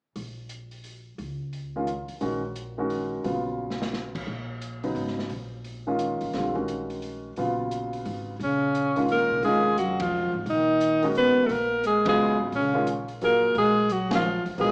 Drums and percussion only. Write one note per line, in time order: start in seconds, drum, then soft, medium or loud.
0.16 open hi-hat soft
0.49 closed hi-hat soft
0.71 open hi-hat soft
0.84 open hi-hat soft
1.19 open hi-hat soft
1.53 open hi-hat soft
1.87 closed hi-hat soft
2.08 open hi-hat soft
2.21 open hi-hat soft
2.56 closed hi-hat soft
2.90 open hi-hat soft
3.24 open hi-hat soft
3.70 snare soft
3.82 snare medium
3.93 snare soft
4.15 kick medium
4.15 crash medium
4.62 closed hi-hat soft
4.83 open hi-hat soft
4.96 open hi-hat soft
5.07 snare soft
5.19 snare soft
5.29 open hi-hat soft
5.65 open hi-hat soft
5.99 closed hi-hat soft
6.21 open hi-hat soft
6.33 snare soft
6.33 open hi-hat soft
6.55 kick soft
6.68 closed hi-hat soft
6.90 open hi-hat soft
7.02 open hi-hat soft
7.36 open hi-hat soft
7.71 closed hi-hat soft
7.93 open hi-hat soft
8.05 open hi-hat soft
8.40 open hi-hat soft
8.75 closed hi-hat soft
8.96 open hi-hat soft
9.08 open hi-hat soft
9.43 open hi-hat soft
9.78 closed hi-hat soft
10.00 kick medium
10.00 ride medium
10.46 open hi-hat soft
10.81 closed hi-hat soft
11.02 open hi-hat soft
11.15 open hi-hat soft
11.49 open hi-hat soft
11.84 closed hi-hat soft
12.05 kick medium
12.05 ride medium
12.52 open hi-hat soft
12.87 closed hi-hat soft
13.08 open hi-hat soft
13.21 open hi-hat soft
13.55 open hi-hat soft
13.90 closed hi-hat soft
14.11 snare medium
14.11 ride medium
14.46 open hi-hat soft
14.58 open hi-hat soft